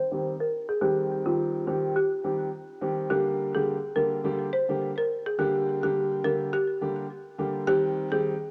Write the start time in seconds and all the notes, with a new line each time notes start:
0.12 D#3 G3 C4 G4
0.40 A#4
0.69 G#4
0.81 D#3 G3 C4 G4
1.26 D#3 G3 C4 F4 G4
1.67 D#3 G3 C4 G4
1.96 G4
2.24 D#3 G3 C4 G4
2.81 D#3 G3 C4 G4
3.10 D3 G3 A#3 G4
3.54 D3 G3 A#3 G4 G#4
3.96 D3 G3 A#3 G4 A#4
4.24 D3 G3 A#3 G4
4.53 C5
4.69 D3 G3 A#3 G4
4.98 A#4
5.26 G#4
5.38 D3 G3 A#3 G4
5.83 D3 G3 A#3 G4
6.24 D3 G3 A#3 G4 A#4
6.53 G4
6.81 D3 G3 A#3 G4
7.38 D3 G3 A#3 G4
7.67 D#3 G3 C4 G4
8.12 D#3 G3 C4 G4 G#4